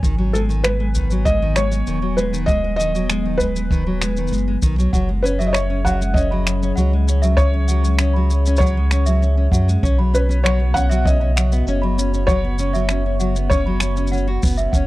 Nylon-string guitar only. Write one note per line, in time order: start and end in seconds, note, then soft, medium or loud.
0.04 0.18 D#3 medium
0.18 0.33 F#3 medium
0.34 0.48 G#3 loud
0.49 0.63 D#3 medium
0.65 0.79 G#3 medium
0.80 0.89 G#3 medium
0.95 1.09 D#3 medium
1.11 1.25 F#3 medium
1.27 1.41 G#3 loud
1.42 1.56 D#3 medium
1.57 1.70 G#3 medium
1.71 1.81 G#3 medium
1.87 2.01 D#3 medium
2.02 2.16 F#3 medium
2.18 2.32 G#3 loud
2.33 2.47 D#3 medium
2.49 2.62 G#3 medium
2.64 2.73 G#3 medium
2.79 2.93 D#3 medium
2.95 3.09 F#3 medium
3.10 3.24 G#3 loud
3.25 3.39 D#3 medium
3.41 3.55 G#3 medium
3.56 3.65 G#3 medium
3.72 3.85 D#3 medium
3.87 4.00 F#3 medium
4.03 4.16 G#3 medium
4.18 4.31 D#3 medium
4.32 4.46 G#3 medium
4.48 4.56 G#3 medium
4.63 4.77 D#3 medium
4.78 4.92 F#3 medium
4.93 5.07 F#3 medium
5.09 5.23 G#3 medium
5.24 5.38 C#4 medium
5.40 5.53 F#3 medium
5.55 5.69 C#4 medium
5.70 5.79 C#4 medium
5.86 5.99 F#3 medium
6.01 6.15 G#3 medium
6.16 6.30 C#4 medium
6.32 6.45 F#3 medium
6.47 6.61 C#4 medium
6.63 6.71 C#4 medium
6.77 6.91 F#3 medium
6.93 7.07 G#3 medium
7.08 7.22 C#4 loud
7.24 7.37 F#3 medium
7.39 7.53 C#4 medium
7.54 7.63 C#4 medium
7.70 7.83 F#3 medium
7.85 7.98 G#3 medium
8.00 8.14 C#4 loud
8.16 8.29 F#3 medium
8.31 8.45 C#4 medium
8.47 8.55 C#4 medium
8.62 8.75 F#3 medium
8.77 8.91 G#3 medium
8.92 9.06 C#4 medium
9.07 9.21 F#3 medium
9.22 9.36 C#4 medium
9.37 9.46 C#4 medium
9.53 9.67 F#3 medium
9.68 9.82 G#3 medium
9.83 9.97 C#4 loud
9.99 10.13 F#3 medium
10.14 10.28 C#4 medium
10.29 10.38 C#4 medium
10.45 10.58 F#3 medium
10.60 10.74 B3 medium
10.75 10.89 C#4 medium
10.91 11.05 F#3 medium
11.07 11.20 C#4 medium
11.21 11.30 C#4 medium
11.37 11.50 F#3 medium
11.52 11.66 B3 medium
11.68 11.81 C#4 loud
11.83 11.97 F#3 medium
11.98 12.12 C#4 medium
12.14 12.22 C#4 medium
12.30 12.43 F#3 medium
12.44 12.58 B3 medium
12.60 12.73 C#4 medium
12.75 12.88 F#3 medium
12.90 13.04 C#4 medium
13.06 13.14 C#4 medium
13.20 13.34 F#3 medium
13.36 13.50 B3 medium
13.52 13.65 C#4 medium
13.67 13.80 F#3 medium
13.81 13.95 C#4 loud
13.97 14.11 C#4 medium
14.12 14.26 C#4 medium
14.27 14.41 F#4 medium
14.43 14.57 B3 medium
14.75 14.87 C#4 medium